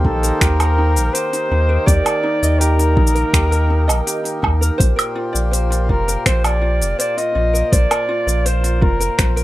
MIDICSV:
0, 0, Header, 1, 6, 480
1, 0, Start_track
1, 0, Key_signature, -2, "major"
1, 0, Tempo, 731707
1, 1228, Time_signature, 4, 2, 24, 8
1, 6191, End_track
2, 0, Start_track
2, 0, Title_t, "Flugelhorn"
2, 0, Program_c, 0, 56
2, 37, Note_on_c, 0, 69, 88
2, 273, Note_on_c, 0, 70, 99
2, 283, Note_off_c, 0, 69, 0
2, 747, Note_on_c, 0, 72, 105
2, 757, Note_off_c, 0, 70, 0
2, 1225, Note_on_c, 0, 74, 118
2, 1235, Note_off_c, 0, 72, 0
2, 1702, Note_on_c, 0, 70, 95
2, 1712, Note_off_c, 0, 74, 0
2, 2905, Note_off_c, 0, 70, 0
2, 3873, Note_on_c, 0, 70, 89
2, 4094, Note_off_c, 0, 70, 0
2, 4108, Note_on_c, 0, 72, 102
2, 4220, Note_off_c, 0, 72, 0
2, 4229, Note_on_c, 0, 74, 94
2, 4564, Note_off_c, 0, 74, 0
2, 4589, Note_on_c, 0, 74, 108
2, 4707, Note_on_c, 0, 75, 110
2, 4717, Note_off_c, 0, 74, 0
2, 5071, Note_on_c, 0, 74, 112
2, 5081, Note_off_c, 0, 75, 0
2, 5551, Note_on_c, 0, 72, 97
2, 5561, Note_off_c, 0, 74, 0
2, 5787, Note_on_c, 0, 70, 91
2, 5797, Note_off_c, 0, 72, 0
2, 6191, Note_off_c, 0, 70, 0
2, 6191, End_track
3, 0, Start_track
3, 0, Title_t, "Ukulele"
3, 0, Program_c, 1, 24
3, 0, Note_on_c, 1, 67, 80
3, 0, Note_on_c, 1, 70, 66
3, 0, Note_on_c, 1, 75, 65
3, 36, Note_on_c, 1, 63, 62
3, 151, Note_off_c, 1, 75, 0
3, 153, Note_off_c, 1, 70, 0
3, 153, Note_on_c, 1, 70, 62
3, 266, Note_off_c, 1, 67, 0
3, 273, Note_on_c, 1, 67, 86
3, 390, Note_off_c, 1, 70, 0
3, 392, Note_on_c, 1, 70, 65
3, 504, Note_off_c, 1, 63, 0
3, 512, Note_on_c, 1, 63, 69
3, 744, Note_off_c, 1, 67, 0
3, 752, Note_on_c, 1, 67, 76
3, 864, Note_off_c, 1, 63, 0
3, 872, Note_on_c, 1, 63, 65
3, 986, Note_off_c, 1, 63, 0
3, 994, Note_on_c, 1, 63, 73
3, 1108, Note_off_c, 1, 70, 0
3, 1108, Note_on_c, 1, 70, 65
3, 1214, Note_off_c, 1, 67, 0
3, 1222, Note_on_c, 1, 67, 85
3, 1341, Note_off_c, 1, 70, 0
3, 1344, Note_on_c, 1, 70, 58
3, 1458, Note_off_c, 1, 63, 0
3, 1466, Note_on_c, 1, 63, 78
3, 1592, Note_on_c, 1, 75, 64
3, 1701, Note_off_c, 1, 67, 0
3, 1709, Note_on_c, 1, 67, 74
3, 1822, Note_off_c, 1, 63, 0
3, 1830, Note_on_c, 1, 63, 65
3, 1935, Note_off_c, 1, 63, 0
3, 1943, Note_on_c, 1, 63, 68
3, 2060, Note_off_c, 1, 70, 0
3, 2063, Note_on_c, 1, 70, 57
3, 2179, Note_off_c, 1, 67, 0
3, 2187, Note_on_c, 1, 67, 80
3, 2300, Note_off_c, 1, 67, 0
3, 2303, Note_off_c, 1, 70, 0
3, 2303, Note_on_c, 1, 70, 64
3, 2420, Note_off_c, 1, 63, 0
3, 2428, Note_on_c, 1, 63, 67
3, 2536, Note_off_c, 1, 75, 0
3, 2543, Note_on_c, 1, 75, 68
3, 2665, Note_off_c, 1, 70, 0
3, 2668, Note_on_c, 1, 67, 75
3, 2773, Note_off_c, 1, 63, 0
3, 2781, Note_on_c, 1, 63, 56
3, 2893, Note_off_c, 1, 63, 0
3, 2901, Note_on_c, 1, 63, 70
3, 3021, Note_off_c, 1, 75, 0
3, 3024, Note_on_c, 1, 70, 65
3, 3133, Note_off_c, 1, 67, 0
3, 3135, Note_on_c, 1, 72, 85
3, 3192, Note_off_c, 1, 63, 0
3, 3255, Note_off_c, 1, 70, 0
3, 3255, Note_on_c, 1, 70, 65
3, 3381, Note_on_c, 1, 65, 77
3, 3492, Note_off_c, 1, 72, 0
3, 3495, Note_on_c, 1, 74, 63
3, 3617, Note_on_c, 1, 72, 82
3, 3734, Note_off_c, 1, 65, 0
3, 3742, Note_on_c, 1, 65, 65
3, 3856, Note_off_c, 1, 65, 0
3, 3864, Note_on_c, 1, 65, 69
3, 3984, Note_off_c, 1, 70, 0
3, 3987, Note_on_c, 1, 70, 63
3, 4099, Note_off_c, 1, 72, 0
3, 4107, Note_on_c, 1, 72, 89
3, 4225, Note_off_c, 1, 74, 0
3, 4228, Note_off_c, 1, 70, 0
3, 4228, Note_on_c, 1, 70, 64
3, 4331, Note_off_c, 1, 65, 0
3, 4339, Note_on_c, 1, 65, 66
3, 4575, Note_off_c, 1, 72, 0
3, 4583, Note_on_c, 1, 72, 80
3, 4697, Note_off_c, 1, 65, 0
3, 4705, Note_on_c, 1, 65, 62
3, 4815, Note_off_c, 1, 65, 0
3, 4823, Note_on_c, 1, 65, 69
3, 4942, Note_off_c, 1, 70, 0
3, 4942, Note_on_c, 1, 70, 67
3, 5058, Note_off_c, 1, 72, 0
3, 5066, Note_on_c, 1, 72, 81
3, 5186, Note_off_c, 1, 70, 0
3, 5186, Note_on_c, 1, 70, 64
3, 5297, Note_off_c, 1, 65, 0
3, 5305, Note_on_c, 1, 65, 73
3, 5422, Note_off_c, 1, 72, 0
3, 5425, Note_on_c, 1, 74, 68
3, 5547, Note_on_c, 1, 72, 83
3, 5657, Note_off_c, 1, 65, 0
3, 5665, Note_on_c, 1, 65, 70
3, 5774, Note_off_c, 1, 65, 0
3, 5782, Note_on_c, 1, 65, 68
3, 5901, Note_off_c, 1, 72, 0
3, 5904, Note_off_c, 1, 70, 0
3, 5904, Note_on_c, 1, 70, 63
3, 6022, Note_on_c, 1, 72, 86
3, 6140, Note_off_c, 1, 70, 0
3, 6142, Note_on_c, 1, 70, 72
3, 6191, Note_off_c, 1, 65, 0
3, 6191, Note_off_c, 1, 70, 0
3, 6191, Note_off_c, 1, 72, 0
3, 6191, Note_off_c, 1, 74, 0
3, 6191, End_track
4, 0, Start_track
4, 0, Title_t, "Harmonium"
4, 0, Program_c, 2, 20
4, 0, Note_on_c, 2, 51, 86
4, 0, Note_on_c, 2, 58, 84
4, 0, Note_on_c, 2, 67, 86
4, 0, Note_on_c, 2, 72, 92
4, 85, Note_on_c, 2, 63, 90
4, 810, Note_off_c, 2, 72, 0
4, 3139, Note_on_c, 2, 46, 68
4, 3147, Note_off_c, 2, 63, 0
4, 3150, Note_off_c, 2, 51, 0
4, 3311, Note_on_c, 2, 72, 91
4, 3828, Note_on_c, 2, 77, 77
4, 4684, Note_off_c, 2, 67, 0
4, 6191, Note_off_c, 2, 46, 0
4, 6191, Note_off_c, 2, 58, 0
4, 6191, Note_off_c, 2, 72, 0
4, 6191, Note_off_c, 2, 77, 0
4, 6191, End_track
5, 0, Start_track
5, 0, Title_t, "Sub bass"
5, 0, Program_c, 3, 38
5, 32, Note_on_c, 3, 34, 83
5, 211, Note_off_c, 3, 34, 0
5, 271, Note_on_c, 3, 39, 99
5, 632, Note_on_c, 3, 34, 76
5, 642, Note_off_c, 3, 39, 0
5, 720, Note_off_c, 3, 34, 0
5, 992, Note_on_c, 3, 39, 86
5, 1171, Note_off_c, 3, 39, 0
5, 1229, Note_on_c, 3, 39, 96
5, 1319, Note_off_c, 3, 39, 0
5, 1591, Note_on_c, 3, 39, 84
5, 1947, Note_on_c, 3, 34, 83
5, 1956, Note_off_c, 3, 39, 0
5, 2128, Note_off_c, 3, 34, 0
5, 2188, Note_on_c, 3, 39, 98
5, 2544, Note_on_c, 3, 34, 75
5, 2553, Note_off_c, 3, 39, 0
5, 2636, Note_off_c, 3, 34, 0
5, 2907, Note_on_c, 3, 39, 88
5, 3088, Note_off_c, 3, 39, 0
5, 3148, Note_on_c, 3, 34, 85
5, 3238, Note_off_c, 3, 34, 0
5, 3507, Note_on_c, 3, 34, 78
5, 3867, Note_on_c, 3, 29, 86
5, 3877, Note_off_c, 3, 34, 0
5, 4048, Note_off_c, 3, 29, 0
5, 4107, Note_on_c, 3, 34, 102
5, 4466, Note_on_c, 3, 29, 82
5, 4476, Note_off_c, 3, 34, 0
5, 4557, Note_off_c, 3, 29, 0
5, 4824, Note_on_c, 3, 34, 82
5, 5007, Note_off_c, 3, 34, 0
5, 5067, Note_on_c, 3, 34, 98
5, 5158, Note_off_c, 3, 34, 0
5, 5423, Note_on_c, 3, 34, 85
5, 5788, Note_on_c, 3, 29, 86
5, 5798, Note_off_c, 3, 34, 0
5, 5968, Note_off_c, 3, 29, 0
5, 6026, Note_on_c, 3, 34, 107
5, 6191, Note_off_c, 3, 34, 0
5, 6191, End_track
6, 0, Start_track
6, 0, Title_t, "Drums"
6, 30, Note_on_c, 9, 36, 68
6, 96, Note_off_c, 9, 36, 0
6, 152, Note_on_c, 9, 46, 30
6, 157, Note_on_c, 9, 82, 64
6, 218, Note_off_c, 9, 46, 0
6, 222, Note_off_c, 9, 82, 0
6, 271, Note_on_c, 9, 26, 78
6, 271, Note_on_c, 9, 36, 121
6, 271, Note_on_c, 9, 46, 64
6, 275, Note_on_c, 9, 82, 57
6, 337, Note_off_c, 9, 26, 0
6, 337, Note_off_c, 9, 36, 0
6, 337, Note_off_c, 9, 46, 0
6, 341, Note_off_c, 9, 82, 0
6, 394, Note_on_c, 9, 46, 45
6, 394, Note_on_c, 9, 77, 73
6, 398, Note_on_c, 9, 82, 34
6, 459, Note_off_c, 9, 46, 0
6, 459, Note_off_c, 9, 77, 0
6, 464, Note_off_c, 9, 82, 0
6, 632, Note_on_c, 9, 46, 31
6, 636, Note_on_c, 9, 82, 68
6, 697, Note_off_c, 9, 46, 0
6, 702, Note_off_c, 9, 82, 0
6, 753, Note_on_c, 9, 46, 71
6, 758, Note_on_c, 9, 82, 68
6, 819, Note_off_c, 9, 46, 0
6, 823, Note_off_c, 9, 82, 0
6, 875, Note_on_c, 9, 46, 40
6, 879, Note_on_c, 9, 82, 33
6, 940, Note_off_c, 9, 46, 0
6, 944, Note_off_c, 9, 82, 0
6, 1229, Note_on_c, 9, 36, 123
6, 1234, Note_on_c, 9, 46, 64
6, 1238, Note_on_c, 9, 82, 59
6, 1295, Note_off_c, 9, 36, 0
6, 1299, Note_off_c, 9, 46, 0
6, 1304, Note_off_c, 9, 82, 0
6, 1351, Note_on_c, 9, 46, 43
6, 1351, Note_on_c, 9, 77, 73
6, 1355, Note_on_c, 9, 82, 33
6, 1416, Note_off_c, 9, 46, 0
6, 1416, Note_off_c, 9, 77, 0
6, 1421, Note_off_c, 9, 82, 0
6, 1596, Note_on_c, 9, 82, 79
6, 1662, Note_off_c, 9, 82, 0
6, 1712, Note_on_c, 9, 46, 61
6, 1717, Note_on_c, 9, 82, 53
6, 1778, Note_off_c, 9, 46, 0
6, 1782, Note_off_c, 9, 82, 0
6, 1833, Note_on_c, 9, 46, 45
6, 1837, Note_on_c, 9, 82, 35
6, 1898, Note_off_c, 9, 46, 0
6, 1903, Note_off_c, 9, 82, 0
6, 1948, Note_on_c, 9, 36, 105
6, 2014, Note_off_c, 9, 36, 0
6, 2014, Note_on_c, 9, 82, 66
6, 2070, Note_on_c, 9, 46, 27
6, 2080, Note_off_c, 9, 82, 0
6, 2136, Note_off_c, 9, 46, 0
6, 2188, Note_on_c, 9, 36, 116
6, 2191, Note_on_c, 9, 26, 76
6, 2191, Note_on_c, 9, 46, 63
6, 2195, Note_on_c, 9, 82, 59
6, 2253, Note_off_c, 9, 36, 0
6, 2256, Note_off_c, 9, 26, 0
6, 2256, Note_off_c, 9, 46, 0
6, 2261, Note_off_c, 9, 82, 0
6, 2311, Note_on_c, 9, 46, 40
6, 2315, Note_on_c, 9, 82, 33
6, 2376, Note_off_c, 9, 46, 0
6, 2381, Note_off_c, 9, 82, 0
6, 2553, Note_on_c, 9, 46, 31
6, 2553, Note_on_c, 9, 77, 60
6, 2557, Note_on_c, 9, 82, 75
6, 2619, Note_off_c, 9, 46, 0
6, 2619, Note_off_c, 9, 77, 0
6, 2623, Note_off_c, 9, 82, 0
6, 2671, Note_on_c, 9, 46, 71
6, 2676, Note_on_c, 9, 82, 65
6, 2737, Note_off_c, 9, 46, 0
6, 2741, Note_off_c, 9, 82, 0
6, 2790, Note_on_c, 9, 46, 41
6, 2795, Note_on_c, 9, 82, 31
6, 2856, Note_off_c, 9, 46, 0
6, 2860, Note_off_c, 9, 82, 0
6, 2908, Note_on_c, 9, 36, 59
6, 2912, Note_on_c, 9, 77, 71
6, 2973, Note_off_c, 9, 36, 0
6, 2977, Note_off_c, 9, 77, 0
6, 3034, Note_on_c, 9, 82, 72
6, 3100, Note_off_c, 9, 82, 0
6, 3148, Note_on_c, 9, 36, 113
6, 3152, Note_on_c, 9, 46, 62
6, 3156, Note_on_c, 9, 82, 54
6, 3214, Note_off_c, 9, 36, 0
6, 3217, Note_off_c, 9, 46, 0
6, 3222, Note_off_c, 9, 82, 0
6, 3272, Note_on_c, 9, 46, 43
6, 3272, Note_on_c, 9, 77, 76
6, 3276, Note_on_c, 9, 82, 33
6, 3337, Note_off_c, 9, 46, 0
6, 3337, Note_off_c, 9, 77, 0
6, 3342, Note_off_c, 9, 82, 0
6, 3513, Note_on_c, 9, 82, 73
6, 3579, Note_off_c, 9, 82, 0
6, 3630, Note_on_c, 9, 46, 56
6, 3635, Note_on_c, 9, 82, 56
6, 3696, Note_off_c, 9, 46, 0
6, 3700, Note_off_c, 9, 82, 0
6, 3752, Note_on_c, 9, 46, 46
6, 3757, Note_on_c, 9, 82, 35
6, 3818, Note_off_c, 9, 46, 0
6, 3822, Note_off_c, 9, 82, 0
6, 3866, Note_on_c, 9, 36, 63
6, 3932, Note_off_c, 9, 36, 0
6, 3990, Note_on_c, 9, 46, 29
6, 3994, Note_on_c, 9, 82, 64
6, 4055, Note_off_c, 9, 46, 0
6, 4060, Note_off_c, 9, 82, 0
6, 4106, Note_on_c, 9, 26, 71
6, 4106, Note_on_c, 9, 36, 109
6, 4106, Note_on_c, 9, 46, 59
6, 4111, Note_on_c, 9, 82, 55
6, 4172, Note_off_c, 9, 26, 0
6, 4172, Note_off_c, 9, 36, 0
6, 4172, Note_off_c, 9, 46, 0
6, 4176, Note_off_c, 9, 82, 0
6, 4227, Note_on_c, 9, 46, 43
6, 4227, Note_on_c, 9, 77, 82
6, 4232, Note_on_c, 9, 82, 33
6, 4293, Note_off_c, 9, 46, 0
6, 4293, Note_off_c, 9, 77, 0
6, 4297, Note_off_c, 9, 82, 0
6, 4471, Note_on_c, 9, 46, 32
6, 4475, Note_on_c, 9, 82, 71
6, 4537, Note_off_c, 9, 46, 0
6, 4541, Note_off_c, 9, 82, 0
6, 4590, Note_on_c, 9, 46, 68
6, 4594, Note_on_c, 9, 82, 59
6, 4656, Note_off_c, 9, 46, 0
6, 4660, Note_off_c, 9, 82, 0
6, 4710, Note_on_c, 9, 46, 38
6, 4715, Note_on_c, 9, 82, 29
6, 4776, Note_off_c, 9, 46, 0
6, 4780, Note_off_c, 9, 82, 0
6, 4954, Note_on_c, 9, 82, 65
6, 5019, Note_off_c, 9, 82, 0
6, 5067, Note_on_c, 9, 36, 116
6, 5069, Note_on_c, 9, 46, 65
6, 5074, Note_on_c, 9, 82, 58
6, 5133, Note_off_c, 9, 36, 0
6, 5135, Note_off_c, 9, 46, 0
6, 5139, Note_off_c, 9, 82, 0
6, 5189, Note_on_c, 9, 46, 43
6, 5189, Note_on_c, 9, 77, 78
6, 5193, Note_on_c, 9, 82, 31
6, 5254, Note_off_c, 9, 46, 0
6, 5254, Note_off_c, 9, 77, 0
6, 5259, Note_off_c, 9, 82, 0
6, 5434, Note_on_c, 9, 82, 72
6, 5499, Note_off_c, 9, 82, 0
6, 5549, Note_on_c, 9, 46, 59
6, 5554, Note_on_c, 9, 82, 51
6, 5615, Note_off_c, 9, 46, 0
6, 5619, Note_off_c, 9, 82, 0
6, 5669, Note_on_c, 9, 46, 47
6, 5673, Note_on_c, 9, 82, 34
6, 5735, Note_off_c, 9, 46, 0
6, 5739, Note_off_c, 9, 82, 0
6, 5788, Note_on_c, 9, 36, 103
6, 5853, Note_off_c, 9, 36, 0
6, 5908, Note_on_c, 9, 46, 30
6, 5912, Note_on_c, 9, 82, 66
6, 5974, Note_off_c, 9, 46, 0
6, 5978, Note_off_c, 9, 82, 0
6, 6027, Note_on_c, 9, 26, 73
6, 6027, Note_on_c, 9, 36, 121
6, 6027, Note_on_c, 9, 46, 65
6, 6031, Note_on_c, 9, 82, 54
6, 6092, Note_off_c, 9, 26, 0
6, 6092, Note_off_c, 9, 46, 0
6, 6093, Note_off_c, 9, 36, 0
6, 6096, Note_off_c, 9, 82, 0
6, 6148, Note_on_c, 9, 46, 45
6, 6152, Note_on_c, 9, 82, 32
6, 6191, Note_off_c, 9, 46, 0
6, 6191, Note_off_c, 9, 82, 0
6, 6191, End_track
0, 0, End_of_file